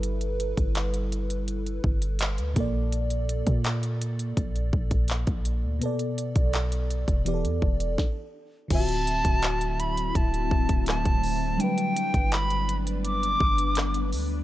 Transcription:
<<
  \new Staff \with { instrumentName = "Flute" } { \time 4/4 \key d \mixolydian \tempo 4 = 83 r1 | r1 | r1 | a''4. b''8 a''4 a''4 |
g''4 b''8 r8 d'''4. r8 | }
  \new Staff \with { instrumentName = "FM electric piano" } { \time 4/4 \key d \mixolydian <g e' a' b'>2.~ <g e' a' b'>8 <bes, bes a' d''>8~ | <bes, bes a' d''>2.~ <bes, bes a' d''>8 r8 | <b, b a' d''>2 <e b g' a' d''>4 r4 | <d c' f' fis' e''>1 |
<fis g d' b'>1 | }
  \new Staff \with { instrumentName = "Ambient pad" } { \time 4/4 \key d \mixolydian r1 | r1 | r1 | <d fis a c' e'>1 |
<d b d'>1 | }
  \new Staff \with { instrumentName = "808-style bass" } { \clef bass \time 4/4 \key d \mixolydian g,,8. g,,4.~ g,,16 g,,8. d,16 bes,,8~ | bes,,8. bes,4~ bes,16 bes,,8 bes,,8. bes,,8 d,16 | r8. b,,4 e,,8 e,16 e,,8 r4 | d,,8. d,,4~ d,,16 d,,8 d,,16 d,,8 d,,8. |
r8. g,,4.~ g,,16 g,,4 d,8 | }
  \new DrumStaff \with { instrumentName = "Drums" } \drummode { \time 4/4 hh16 hh16 hh16 <hh bd>16 <hc hh>16 hh16 hh16 hh16 hh16 hh16 bd16 hh16 <hc hh>16 hh16 <hh bd>8 | hh16 hh16 hh16 <hh bd>16 <hc hh>16 hh16 hh16 hh16 <hh bd>16 hh16 bd16 <hh bd>16 <hc hh>16 <hh bd>16 hh8 | hh16 hh16 hh16 <hh bd>16 <hc hh>16 hh16 hh16 <hh bd>16 hh16 hh16 bd16 hh16 <bd sn>4 | <cymc hh bd>16 hh16 hh16 <hh bd>16 <hc hh>16 hh16 hh16 hh16 <hh bd>16 hh16 bd16 <hh bd>16 <hc hh ss>16 <hh bd>16 hho8 |
hh16 hh16 hh16 <hh bd>16 <hc hh>16 hh16 hh16 hh16 hh16 hh16 bd16 hh16 <hc hh ss>16 hh16 hho8 | }
>>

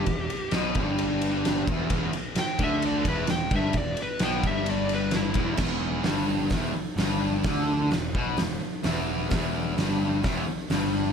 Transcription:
<<
  \new Staff \with { instrumentName = "Lead electric guitar" } { \time 4/4 \key e \minor \tempo 4 = 129 g'4 r2. | r4 g''8 e''8 d''8 b'8 g''8 e''8 | d''8 b'8 g''8 e''8 d''8 b'8 e'4 | r1 |
r1 | r1 | }
  \new Staff \with { instrumentName = "Distorted electric guitar" } { \clef bass \time 4/4 \key e \minor e,8 r8 b,8 g,2 e,8 | e,8 r4 d4 e,8 e,8 g,8 | e,8 r8 b,8 g,2 e,8 | e,4 g,4 e,8 r8 g,4 |
d4 e,8 b,8 e,8 r8 e,4 | e,4 g,4 e,8 r8 g,4 | }
  \new Staff \with { instrumentName = "Picked electric bass" } { \clef bass \time 4/4 \key e \minor e,,8 r8 b,,8 g,,2 e,,8 | e,,8 r4 d,4 e,,8 e,,8 g,,8 | e,,8 r8 b,,8 g,,2 e,,8 | e,,4 g,,4 e,,8 r8 g,,4 |
d,4 e,,8 b,,8 e,,8 r8 e,,4 | e,,4 g,,4 e,,8 r8 g,,4 | }
  \new DrumStaff \with { instrumentName = "Drums" } \drummode { \time 4/4 <bd cymr>8 cymr8 <cymr sn>8 <bd cymr>8 cymr8 cymr8 <cymr sn>8 <bd cymr>8 | <bd cymr>8 cymr8 <cymr sn>8 <bd cymr>8 cymr8 <bd cymr>8 <cymr sn>8 <bd cymr>8 | <bd cymr>8 cymr8 <cymr sn>8 <bd cymr>8 cymr8 cymr8 <cymr sn>8 <bd cymr>8 | <cymc bd sn>4 <hho sn>4 <hho bd sn>4 <hho sn>4 |
<hho bd sn>4 <hho sn>8 bd8 <hho sn>4 <hho sn>4 | <hho bd sn>4 <hho sn>4 <hho bd sn>4 <hho sn>4 | }
>>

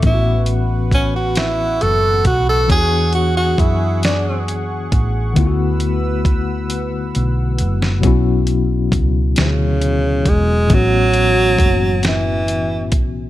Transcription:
<<
  \new Staff \with { instrumentName = "Analog synth pad" } { \time 6/8 \key b \dorian \tempo 4. = 45 << { b'2. | gis'2. | <b' e'''>2. | r2. |
r2. | } \\ { <fis'' cis'''>2.~ | <fis'' cis'''>2.~ | <fis'' cis'''>2. | r2. |
r2. | } >> }
  \new Staff \with { instrumentName = "Tenor saxophone" } { \time 6/8 \key b \dorian e'8 r8 cis'16 fis'16 e'8 a'8 fis'16 a'16 | gis'8 fis'16 fis'16 e'8 d'8 r4 | r2. | r4. cis4 gis8 |
fis4. e4 r8 | }
  \new Staff \with { instrumentName = "Tine electric piano" } { \time 6/8 \key b \dorian <a, e b cis' e' fis'>2. | <e b d' fis' gis' cis''>2. | <d a b e' eis' fis'>2. | <b, fis b cis' e' fis'>2. |
<a, e b cis' fis'>2. | }
  \new Staff \with { instrumentName = "Fingered electric bass" } { \clef bass \time 6/8 \key b \dorian a,,2 fis,,8 b,,8 | e,4 fis,4. a,,8 | d,2 b,,8 fis,,8 | b,,4 cis,8 d,4 e,,8 |
a,,4 fis,,4. b,,8 | }
  \new DrumStaff \with { instrumentName = "Drums" } \drummode { \time 6/8 <hh bd>8 hh8 <hh bd>8 <hh sn>8 hh8 <hh bd>8 | <hh bd>8 hh8 <hh bd>8 <hh sn>8 hh8 <hh bd>8 | <hh bd>8 hh8 <hh bd>8 hh8 hh8 hh16 sn16 | <hh bd>8 hh8 <hh bd>8 <hh sn>8 hh8 <hh bd>8 |
<hh bd>8 hh8 <hh bd>8 <hh sn>8 hh8 <hh bd>8 | }
>>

